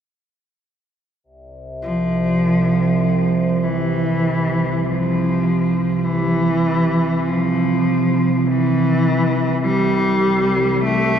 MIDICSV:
0, 0, Header, 1, 3, 480
1, 0, Start_track
1, 0, Key_signature, 0, "major"
1, 0, Tempo, 500000
1, 10745, End_track
2, 0, Start_track
2, 0, Title_t, "Cello"
2, 0, Program_c, 0, 42
2, 1752, Note_on_c, 0, 53, 82
2, 3497, Note_on_c, 0, 52, 80
2, 3511, Note_off_c, 0, 53, 0
2, 4650, Note_on_c, 0, 53, 80
2, 4665, Note_off_c, 0, 52, 0
2, 5798, Note_on_c, 0, 52, 92
2, 5812, Note_off_c, 0, 53, 0
2, 6979, Note_on_c, 0, 53, 83
2, 6993, Note_off_c, 0, 52, 0
2, 8127, Note_on_c, 0, 52, 90
2, 8141, Note_off_c, 0, 53, 0
2, 9254, Note_on_c, 0, 55, 92
2, 9268, Note_off_c, 0, 52, 0
2, 10390, Note_off_c, 0, 55, 0
2, 10400, Note_on_c, 0, 57, 103
2, 10745, Note_off_c, 0, 57, 0
2, 10745, End_track
3, 0, Start_track
3, 0, Title_t, "Synth drone"
3, 0, Program_c, 1, 95
3, 1186, Note_on_c, 1, 48, 68
3, 1193, Note_on_c, 1, 36, 71
3, 10745, Note_off_c, 1, 36, 0
3, 10745, Note_off_c, 1, 48, 0
3, 10745, End_track
0, 0, End_of_file